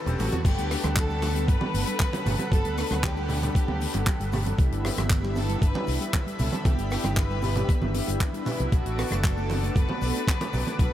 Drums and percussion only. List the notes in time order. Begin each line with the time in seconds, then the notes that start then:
0.06 closed hi-hat, low conga, cabasa
0.19 open hi-hat, high tom, muted conga, cabasa
0.32 closed hi-hat, mid tom, high conga, cabasa
0.45 kick, closed hi-hat, crash, cabasa
0.58 closed hi-hat
0.71 cross-stick, open hi-hat, muted conga, cabasa
0.83 cross-stick, closed hi-hat, high conga, cabasa
0.96 kick, clap, closed hi-hat, cabasa
1.10 cabasa
1.22 open hi-hat, muted conga, high conga, cabasa
1.36 closed hi-hat, cabasa
1.48 kick, closed hi-hat, cabasa
1.61 muted conga, high conga
1.74 open hi-hat, cabasa
1.87 closed hi-hat, cabasa
2.00 kick, clap, closed hi-hat, high conga, cabasa
2.12 closed hi-hat, muted conga, cabasa
2.26 open hi-hat, low conga, cabasa
2.39 closed hi-hat, high conga, cabasa
2.52 kick, closed hi-hat, muted conga, cabasa
2.65 closed hi-hat
2.77 cross-stick, open hi-hat, cabasa
2.91 cross-stick, closed hi-hat, high conga, cabasa
3.03 kick, clap, closed hi-hat, muted conga, cabasa
3.17 cabasa
3.29 open hi-hat, low conga, cabasa
3.42 closed hi-hat, muted conga, low conga, cabasa
3.55 kick, closed hi-hat, cabasa
3.68 high conga
3.81 open hi-hat, cabasa
3.94 closed hi-hat, muted conga, cabasa
4.06 kick, clap, closed hi-hat, high conga, cabasa
4.20 closed hi-hat, cabasa
4.32 open hi-hat, muted conga, low conga, cabasa
4.46 closed hi-hat, high conga, cabasa
4.58 kick, closed hi-hat, cabasa
4.72 closed hi-hat
4.85 cross-stick, open hi-hat, muted conga, cabasa
4.97 cross-stick, closed hi-hat, high conga, cabasa
5.10 kick, clap, closed hi-hat, cabasa
5.24 muted conga, cabasa
5.36 open hi-hat, high conga, cabasa
5.49 closed hi-hat, cabasa
5.62 kick, closed hi-hat, cabasa
5.75 muted conga, high conga
5.87 open hi-hat, cabasa
6.00 closed hi-hat, cabasa
6.13 kick, clap, closed hi-hat, muted conga, high conga, cabasa
6.27 closed hi-hat, cabasa
6.39 open hi-hat, low conga, cabasa
6.53 closed hi-hat, high conga, cabasa
6.65 kick, closed hi-hat, muted conga, cabasa
6.78 closed hi-hat, cabasa
6.90 cross-stick, open hi-hat, cabasa
7.04 cross-stick, closed hi-hat, muted conga, high conga, cabasa
7.17 kick, clap, closed hi-hat, cabasa
7.31 cabasa
7.42 open hi-hat, low conga, cabasa
7.56 closed hi-hat, muted conga, low conga, cabasa
7.69 kick, closed hi-hat, cabasa
7.82 high conga, cabasa
7.94 open hi-hat, muted conga, cabasa
8.07 closed hi-hat, cabasa
8.20 kick, clap, closed hi-hat, high conga, cabasa
8.34 closed hi-hat, cabasa
8.46 open hi-hat, muted conga, low conga, cabasa
8.60 closed hi-hat, high conga, cabasa
8.72 kick, closed hi-hat, cabasa
8.86 closed hi-hat
8.99 cross-stick, open hi-hat, muted conga, cabasa
9.10 cross-stick, closed hi-hat, high conga, cabasa
9.24 kick, clap, closed hi-hat, cabasa
9.37 cabasa
9.50 open hi-hat, muted conga, high conga, cabasa
9.63 closed hi-hat, cabasa
9.75 kick, closed hi-hat, cabasa
9.89 muted conga, high conga
10.01 open hi-hat, cabasa
10.15 closed hi-hat, cabasa
10.27 kick, clap, closed hi-hat, high conga, cabasa
10.41 closed hi-hat, muted conga, cabasa
10.53 open hi-hat, low conga, cabasa
10.66 closed hi-hat, high conga, cabasa
10.79 kick, closed hi-hat, muted conga, cabasa